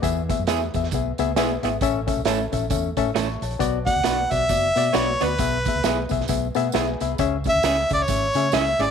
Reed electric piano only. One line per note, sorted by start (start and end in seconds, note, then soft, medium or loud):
0.02 0.70 E3 medium
0.02 0.20 B3 loud
0.02 0.21 G#4 medium
0.02 0.21 E5 loud
0.29 0.42 B3 medium
0.29 0.42 G#4 medium
0.29 0.42 E5 medium
0.47 0.65 B3 medium
0.47 0.66 G#4 medium
0.47 0.66 E5 medium
0.75 0.87 B3 medium
0.75 0.87 G#4 medium
0.75 0.87 E5 medium
0.94 1.11 B3 medium
0.94 1.11 G#4 medium
0.94 1.11 E5 medium
1.19 1.31 B3 loud
1.19 1.31 G#4 loud
1.19 1.32 E5 loud
1.37 1.55 B3 loud
1.37 1.55 G#4 loud
1.37 1.55 E5 loud
1.63 1.76 B3 medium
1.63 1.76 G#4 medium
1.63 1.76 E5 loud
1.82 2.49 A2 medium
1.82 2.00 C#4 loud
1.82 2.00 A4 loud
1.82 2.00 E5 loud
2.07 2.20 C#4 medium
2.07 2.20 A4 medium
2.07 2.21 E5 medium
2.26 2.44 C#4 medium
2.26 2.44 A4 medium
2.26 2.45 E5 medium
2.52 2.65 C#4 medium
2.52 2.65 A4 medium
2.52 2.66 E5 medium
2.70 2.88 C#4 medium
2.70 2.89 A4 medium
2.70 2.89 E5 medium
2.97 3.10 C#4 loud
2.97 3.10 A4 loud
2.97 3.10 E5 loud
3.16 3.42 E5 medium
3.16 3.41 C#6 medium
3.43 3.85 C#5 medium
3.43 3.85 A5 medium
3.59 4.27 B2 medium
3.59 3.78 B3 loud
3.59 3.78 F#4 loud
3.59 3.78 D5 loud
3.86 3.99 B3 medium
3.86 3.99 F#4 medium
3.86 3.99 D5 medium
4.05 4.23 B3 medium
4.05 4.23 F#4 medium
4.05 4.23 D5 medium
4.31 4.44 B3 medium
4.31 4.44 F#4 medium
4.31 4.44 D5 medium
4.49 4.67 B3 medium
4.49 4.67 F#4 medium
4.49 4.68 D5 medium
4.76 4.88 B3 medium
4.76 4.89 F#4 medium
4.76 4.89 D5 loud
4.93 5.12 B3 medium
4.93 5.12 F#4 medium
4.93 5.12 D5 medium
5.21 5.33 B3 medium
5.21 5.33 F#4 medium
5.21 5.34 D5 medium
5.39 6.07 B2 medium
5.39 5.57 B3 medium
5.39 5.57 G#4 medium
5.39 5.57 E5 loud
5.67 5.78 B3 medium
5.67 5.79 G#4 medium
5.67 5.79 E5 medium
5.85 6.02 B3 medium
5.85 6.02 G#4 medium
5.85 6.03 E5 medium
6.10 6.22 B3 medium
6.10 6.23 G#4 medium
6.10 6.23 E5 medium
6.29 6.46 B3 medium
6.29 6.47 G#4 medium
6.29 6.47 E5 medium
6.55 6.67 B3 loud
6.55 6.68 G#4 loud
6.55 6.68 E5 loud
6.55 6.73 F#5 medium
6.74 6.91 B3 loud
6.74 6.92 G#4 loud
6.74 6.92 E5 loud
6.74 6.99 G#5 medium
7.01 7.13 B3 medium
7.01 7.13 G#4 medium
7.01 7.13 E5 medium
7.01 7.18 B5 medium
7.19 7.86 C#3 medium
7.19 7.36 C#4 loud
7.19 7.36 G#4 loud
7.19 7.37 E5 loud
7.46 7.57 C#4 medium
7.46 7.58 G#4 medium
7.46 7.58 E5 medium
7.64 7.81 C#4 medium
7.64 7.82 G#4 medium
7.64 7.82 E5 medium
7.91 8.02 C#4 medium
7.91 8.03 G#4 medium
7.91 8.03 E5 medium
8.08 8.26 C#4 medium
8.08 8.26 G#4 medium
8.08 8.26 E5 medium
8.35 8.47 C#4 loud
8.35 8.47 G#4 medium
8.35 8.48 E5 loud
8.53 8.70 C#4 medium
8.53 8.71 G#4 medium
8.53 8.71 E5 loud
8.79 8.91 C#4 medium
8.79 8.91 G#4 medium
8.79 8.91 E5 medium